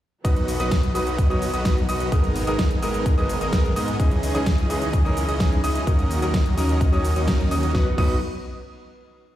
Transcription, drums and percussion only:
0.25 kick loud
0.25 closed hi-hat medium
0.25 shaker soft
0.36 closed hi-hat soft
0.36 shaker soft
0.48 open hi-hat loud
0.48 shaker medium
0.60 closed hi-hat medium
0.60 shaker soft
0.71 kick loud
0.71 snare loud
0.71 closed hi-hat medium
0.71 shaker soft
0.83 closed hi-hat soft
0.83 shaker soft
0.95 open hi-hat loud
0.95 shaker medium
1.07 closed hi-hat medium
1.07 shaker soft
1.18 kick loud
1.18 closed hi-hat medium
1.18 shaker soft
1.31 shaker soft
1.42 open hi-hat loud
1.42 shaker medium
1.54 closed hi-hat medium
1.54 shaker soft
1.65 kick loud
1.65 snare loud
1.65 closed hi-hat medium
1.65 shaker soft
1.77 shaker soft
1.89 open hi-hat loud
1.89 shaker medium
2.00 closed hi-hat medium
2.00 shaker soft
2.12 kick loud
2.12 closed hi-hat medium
2.12 shaker soft
2.24 closed hi-hat soft
2.24 shaker soft
2.36 open hi-hat loud
2.36 shaker medium
2.47 closed hi-hat medium
2.47 shaker soft
2.59 kick loud
2.59 snare loud
2.59 closed hi-hat medium
2.59 shaker soft
2.71 closed hi-hat soft
2.71 shaker soft
2.83 open hi-hat loud
2.83 shaker medium
2.94 closed hi-hat medium
2.94 shaker soft
3.06 kick loud
3.06 closed hi-hat medium
3.06 shaker soft
3.18 shaker soft
3.29 open hi-hat loud
3.29 shaker medium
3.41 closed hi-hat medium
3.41 shaker soft
3.53 kick loud
3.53 snare loud
3.53 closed hi-hat medium
3.53 shaker soft
3.65 shaker soft
3.76 open hi-hat loud
3.76 shaker medium
3.88 closed hi-hat medium
3.88 shaker soft
4.00 kick loud
4.00 closed hi-hat medium
4.00 shaker soft
4.11 closed hi-hat soft
4.11 shaker soft
4.23 open hi-hat loud
4.23 shaker medium
4.35 closed hi-hat medium
4.35 shaker soft
4.46 kick loud
4.46 snare loud
4.46 closed hi-hat medium
4.46 shaker soft
4.58 closed hi-hat soft
4.58 shaker soft
4.70 open hi-hat loud
4.70 shaker medium
4.82 closed hi-hat medium
4.82 shaker soft
4.93 kick loud
4.93 closed hi-hat medium
4.93 shaker soft
5.06 shaker soft
5.17 open hi-hat loud
5.17 shaker medium
5.29 closed hi-hat soft
5.29 shaker soft
5.40 kick loud
5.40 snare loud
5.40 closed hi-hat medium
5.40 shaker soft
5.52 shaker soft
5.64 open hi-hat loud
5.64 shaker medium
5.75 closed hi-hat medium
5.75 shaker soft
5.87 kick loud
5.87 closed hi-hat medium
5.87 shaker soft
5.99 closed hi-hat soft
5.99 shaker soft
6.11 open hi-hat loud
6.11 shaker medium
6.22 closed hi-hat medium
6.22 shaker soft
6.34 kick loud
6.34 snare loud
6.34 closed hi-hat medium
6.34 shaker soft
6.46 closed hi-hat soft
6.46 shaker soft
6.57 snare soft
6.57 open hi-hat loud
6.57 shaker medium
6.69 closed hi-hat medium
6.69 shaker soft
6.81 kick loud
6.81 closed hi-hat medium
6.81 shaker soft
6.93 shaker soft
7.05 open hi-hat loud
7.05 shaker medium
7.16 closed hi-hat soft
7.16 shaker soft
7.28 kick loud
7.28 snare loud
7.28 closed hi-hat medium
7.28 shaker soft
7.40 shaker soft
7.51 open hi-hat loud
7.51 shaker medium
7.63 closed hi-hat medium
7.63 shaker soft
7.75 kick loud
7.75 snare medium
7.98 kick loud
7.98 crash medium

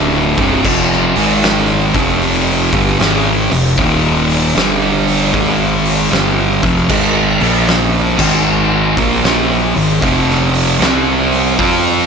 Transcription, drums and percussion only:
0.38 kick loud
0.38 open hi-hat medium
0.65 kick loud
0.65 crash loud
0.92 snare soft
1.16 open hi-hat medium
1.43 snare loud
1.43 open hi-hat medium
1.94 kick loud
1.94 open hi-hat medium
2.22 open hi-hat medium
2.73 kick loud
2.73 open hi-hat medium
3.00 snare loud
3.00 open hi-hat medium
3.51 open hi-hat medium
3.78 kick loud
3.78 open hi-hat medium
4.30 open hi-hat medium
4.56 snare loud
4.56 open hi-hat medium
5.08 open hi-hat medium
5.34 kick loud
5.34 open hi-hat medium
5.85 open hi-hat medium
6.12 snare loud
6.12 open hi-hat medium
6.63 kick loud
6.63 open hi-hat medium
6.89 kick loud
6.89 crash loud
7.40 open hi-hat medium
7.67 snare loud
7.67 open hi-hat medium
8.19 kick loud
8.19 crash loud
8.97 kick loud
8.97 open hi-hat medium
9.24 snare loud
9.24 open hi-hat medium
9.76 open hi-hat medium
10.02 kick loud
10.02 open hi-hat medium
10.30 snare soft
10.54 open hi-hat medium
10.81 snare loud
10.81 open hi-hat medium
11.32 open hi-hat medium
11.59 kick loud
11.59 open hi-hat medium

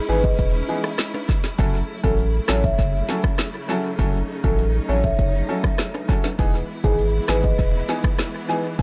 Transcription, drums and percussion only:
0.09 shaker soft
0.24 kick loud
0.24 shaker medium
0.39 kick loud
0.39 closed hi-hat medium
0.39 shaker medium
0.54 shaker medium
0.83 cross-stick loud
0.83 shaker medium
0.98 cross-stick medium
0.98 snare loud
0.98 closed hi-hat medium
0.98 shaker medium
1.14 high timbale medium
1.14 shaker medium
1.29 kick loud
1.29 shaker medium
1.44 snare medium
1.44 shaker medium
1.59 kick loud
1.59 closed hi-hat medium
1.59 shaker medium
1.74 shaker medium
2.04 kick loud
2.04 shaker medium
2.19 closed hi-hat medium
2.19 shaker medium
2.34 shaker medium
2.48 cross-stick loud
2.48 snare loud
2.48 shaker soft
2.64 kick loud
2.64 shaker medium
2.79 kick loud
2.79 closed hi-hat medium
2.79 shaker medium
2.94 shaker medium
3.09 snare medium
3.23 kick loud
3.23 cross-stick loud
3.23 shaker medium
3.38 cross-stick medium
3.38 snare loud
3.38 closed hi-hat medium
3.38 shaker medium
3.54 shaker soft
3.69 shaker medium
3.84 shaker medium
3.99 kick loud
3.99 closed hi-hat medium
3.99 shaker medium
4.14 shaker medium
4.44 kick loud
4.44 shaker medium
4.59 closed hi-hat medium
4.59 shaker medium
4.74 shaker medium
4.89 shaker soft
5.04 kick loud
5.04 shaker medium
5.19 kick loud
5.19 closed hi-hat medium
5.19 shaker medium
5.35 shaker medium
5.63 kick loud
5.63 cross-stick loud
5.63 shaker medium
5.78 cross-stick medium
5.78 snare loud
5.78 closed hi-hat medium
5.78 shaker medium
5.95 high timbale medium
5.95 shaker medium
6.09 kick loud
6.09 shaker medium
6.24 snare medium
6.24 high timbale medium
6.24 shaker medium
6.39 kick loud
6.39 closed hi-hat medium
6.39 shaker medium
6.54 shaker medium
6.84 kick loud
6.84 shaker medium
6.99 closed hi-hat medium
6.99 shaker medium
7.14 shaker medium
7.28 cross-stick loud
7.28 snare loud
7.28 shaker soft
7.44 kick medium
7.44 shaker medium
7.59 kick loud
7.59 closed hi-hat medium
7.59 shaker medium
7.75 shaker medium
7.89 snare medium
8.03 kick loud
8.03 cross-stick loud
8.03 shaker medium
8.19 cross-stick medium
8.19 snare loud
8.19 closed hi-hat medium
8.19 shaker medium
8.34 shaker medium
8.49 shaker medium
8.64 shaker medium
8.79 kick loud
8.79 closed hi-hat medium

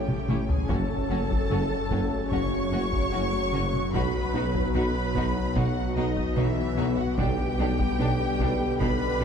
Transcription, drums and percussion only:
0.08 taiko mid medium
0.28 taiko mid medium
0.49 taiko low medium
0.69 taiko medium
1.30 taiko medium
1.91 taiko medium
2.32 taiko medium
2.92 taiko medium
3.73 taiko mid soft
3.94 taiko medium
4.54 taiko medium
5.15 taiko medium
5.56 taiko medium
6.17 taiko medium
6.98 taiko mid medium
7.18 taiko medium
7.79 taiko medium
8.40 taiko medium
8.80 taiko medium

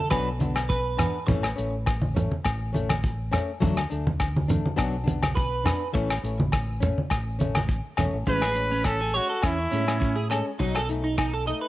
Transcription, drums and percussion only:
0.11 kick medium
0.11 cross-stick medium
0.11 low agogo medium
0.40 closed hi-hat soft
0.40 high conga medium
0.56 cross-stick medium
0.56 low agogo medium
0.70 kick medium
0.98 cross-stick medium
0.98 closed hi-hat medium
0.98 low conga medium
0.98 low agogo medium
1.28 kick medium
1.28 low conga medium
1.43 cross-stick medium
1.43 low agogo medium
1.58 closed hi-hat soft
1.86 kick medium
1.86 cross-stick medium
1.86 low agogo medium
2.02 high conga medium
2.16 closed hi-hat medium
2.16 low conga medium
2.32 high conga medium
2.44 kick medium
2.44 cross-stick medium
2.44 low agogo medium
2.74 closed hi-hat medium
2.74 high conga medium
2.89 cross-stick medium
2.89 high conga medium
2.89 low agogo medium
3.04 kick medium
3.33 cross-stick medium
3.33 closed hi-hat soft
3.33 low conga medium
3.33 low agogo medium
3.62 kick medium
3.62 low conga medium
3.77 cross-stick medium
3.77 low agogo medium
3.91 closed hi-hat soft
4.07 high conga medium
4.20 kick medium
4.20 cross-stick medium
4.20 low agogo medium
4.36 high conga medium
4.49 closed hi-hat medium
4.49 low conga medium
4.66 high conga medium
4.78 kick medium
4.78 cross-stick medium
4.78 low agogo medium
5.08 closed hi-hat medium
5.08 high conga medium
5.23 cross-stick medium
5.23 high conga medium
5.23 low agogo medium
5.37 kick medium
5.66 cross-stick medium
5.66 closed hi-hat medium
5.66 low conga medium
5.66 low agogo medium
5.95 kick medium
6.10 cross-stick medium
6.10 low agogo medium
6.24 closed hi-hat medium
6.40 high conga medium
6.52 kick medium
6.52 cross-stick medium
6.52 low agogo medium
6.82 closed hi-hat medium
6.82 low conga medium
6.98 high conga medium
7.10 kick medium
7.10 cross-stick medium
7.10 low agogo medium
7.40 closed hi-hat soft
7.40 high conga medium
7.55 cross-stick medium
7.55 high conga medium
7.55 low agogo medium
7.69 kick medium
7.97 cross-stick medium
7.97 closed hi-hat soft
7.97 low conga medium
7.97 low agogo medium
8.27 kick medium
8.42 cross-stick medium
8.42 low agogo medium
8.55 closed hi-hat medium
8.84 kick medium
8.84 cross-stick medium
8.84 low agogo medium
9.14 closed hi-hat medium
9.42 kick medium
9.42 cross-stick medium
9.42 low agogo medium
9.72 closed hi-hat soft
9.88 cross-stick medium
9.88 low agogo medium
10.02 kick medium
10.31 cross-stick medium
10.31 closed hi-hat soft
10.31 low agogo medium
10.60 kick medium
10.75 cross-stick medium
10.75 low agogo medium
10.89 closed hi-hat soft
11.18 kick medium
11.18 cross-stick medium
11.18 low agogo medium
11.47 closed hi-hat soft

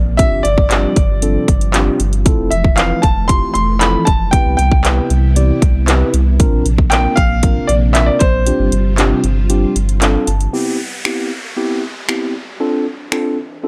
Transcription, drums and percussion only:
0.19 kick loud
0.19 closed hi-hat medium
0.45 closed hi-hat medium
0.58 kick medium
0.71 clap loud
0.71 closed hi-hat medium
0.96 kick loud
0.96 closed hi-hat medium
1.22 closed hi-hat medium
1.48 kick loud
1.48 closed hi-hat medium
1.61 closed hi-hat medium
1.74 clap loud
1.74 closed hi-hat loud
2.00 closed hi-hat medium
2.13 closed hi-hat medium
2.26 kick loud
2.26 closed hi-hat medium
2.52 closed hi-hat medium
2.64 kick medium
2.77 clap loud
2.77 closed hi-hat medium
3.03 kick medium
3.03 closed hi-hat medium
3.29 kick medium
3.29 closed hi-hat loud
3.55 closed hi-hat medium
3.81 clap loud
3.81 closed hi-hat loud
4.07 kick loud
4.07 closed hi-hat medium
4.33 kick loud
4.33 closed hi-hat loud
4.59 closed hi-hat medium
4.72 kick medium
4.85 clap loud
4.85 closed hi-hat medium
5.10 closed hi-hat medium
5.36 closed hi-hat medium
5.62 kick loud
5.62 closed hi-hat medium
5.88 clap loud
5.88 closed hi-hat loud
6.14 closed hi-hat medium
6.40 kick loud
6.40 closed hi-hat loud
6.66 closed hi-hat medium
6.78 kick medium
6.91 clap loud
6.91 closed hi-hat medium
7.17 kick loud
7.17 closed hi-hat medium
7.43 kick medium
7.43 closed hi-hat medium
7.69 closed hi-hat medium
7.95 clap loud
7.95 closed hi-hat loud
8.20 kick loud
8.20 closed hi-hat medium
8.46 closed hi-hat loud
8.72 closed hi-hat medium
8.98 clap loud
8.98 closed hi-hat medium
9.24 closed hi-hat medium
9.50 closed hi-hat loud
9.76 closed hi-hat medium
9.89 closed hi-hat medium
10.02 clap loud
10.02 closed hi-hat loud
10.27 closed hi-hat medium
10.40 closed hi-hat medium
11.05 finger snap loud
12.09 finger snap loud
13.12 finger snap loud

